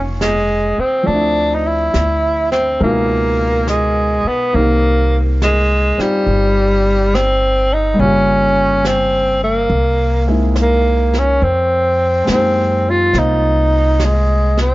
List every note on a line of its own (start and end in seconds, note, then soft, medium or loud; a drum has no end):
0.00 0.74 F1 medium
0.00 1.09 C#3 soft
0.00 1.02 F3 medium
0.00 1.06 G#3 soft
0.00 1.07 A#3 soft
0.00 1.08 D#4 soft
0.00 1.08 F4 soft
0.00 1.07 C5 soft
0.21 0.81 G#3 medium
0.21 snare soft
0.21 hi-hat pedal soft
0.78 1.08 C4 medium
0.78 muted upright bass stroke soft
1.03 2.78 F3 soft
1.03 2.79 A3 soft
1.03 1.56 D4 medium
1.03 brush sweep soft
1.08 1.89 D2 medium
1.08 2.81 C4 soft
1.08 2.82 D4 soft
1.14 2.83 E4 soft
1.55 1.68 D#4 medium
1.66 2.51 E4 medium
1.94 2.76 D2 medium
1.94 snare soft
1.94 hi-hat pedal soft
2.52 2.78 C4 medium
2.52 snare soft
2.79 4.21 C#2 medium
2.79 4.54 B2 soft
2.79 4.53 G#3 soft
2.79 3.64 A#3 medium
2.79 4.55 D#4 soft
2.79 4.54 A#4 soft
2.79 brush sweep soft
2.84 4.56 F4 soft
3.67 4.29 G#3 medium
3.67 snare soft
3.67 hi-hat pedal soft
4.24 4.57 B3 medium
4.24 muted upright bass stroke soft
4.53 5.94 C2 medium
4.53 7.99 D#3 soft
4.53 7.95 A#3 soft
4.53 5.23 A#3 medium
4.53 5.96 C4 soft
4.53 5.98 D#4 soft
4.53 brush sweep soft
4.58 5.99 G4 soft
5.42 6.02 G#3 medium
5.42 snare soft
5.42 hi-hat pedal soft
5.98 7.17 G3 medium
5.98 7.99 C4 soft
5.98 7.99 D#4 soft
5.98 8.00 F4 soft
5.98 8.00 G4 soft
5.98 muted upright bass stroke soft
5.98 snare soft
6.27 7.95 G1 medium
6.27 brush sweep soft
7.15 7.75 C4 medium
7.15 snare soft
7.15 hi-hat pedal soft
7.74 8.02 D#4 medium
7.94 9.67 G3 medium
7.94 9.68 A#3 soft
7.99 9.66 G1 medium
7.99 9.70 C#3 soft
7.99 8.88 C#4 medium
7.99 9.71 F4 soft
7.99 brush sweep soft
8.04 9.72 G4 medium
8.85 9.42 C4 medium
8.85 snare soft
8.85 hi-hat pedal soft
9.44 10.35 A#3 medium
9.70 11.37 C2 medium
9.70 brush sweep soft
10.27 11.42 C3 soft
10.27 11.41 G#3 soft
10.27 11.42 A#3 soft
10.27 11.42 D#4 soft
10.27 11.42 E4 medium
10.56 snare soft
10.56 hi-hat pedal soft
10.61 11.20 A#3 medium
11.13 snare soft
11.19 11.45 C#4 medium
11.41 12.23 F2 medium
11.41 12.28 C4 medium
11.41 brush sweep soft
12.24 14.75 G#3 soft
12.24 13.12 A#3 soft
12.24 snare soft
12.24 hi-hat pedal soft
12.28 13.10 F#2 medium
12.28 13.14 C4 soft
12.28 12.92 C4 medium
12.32 14.75 D#4 soft
12.32 14.75 G4 soft
12.90 13.20 F4 medium
13.13 14.75 C2 medium
13.13 14.75 A#3 soft
13.13 14.75 C4 soft
13.13 14.75 F4 soft
13.13 brush sweep soft
13.13 snare soft
13.18 14.06 D#4 medium
14.00 snare soft
14.00 hi-hat pedal soft
14.05 14.59 G#3 medium
14.57 14.75 C4 medium
14.57 snare soft